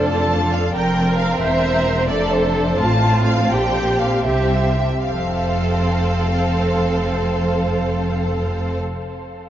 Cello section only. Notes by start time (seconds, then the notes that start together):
Already playing: F2
0.75 F2
1.42 E2
2.10 F2
2.80 A2
3.52 A#2
4.27 C3
5.08 F2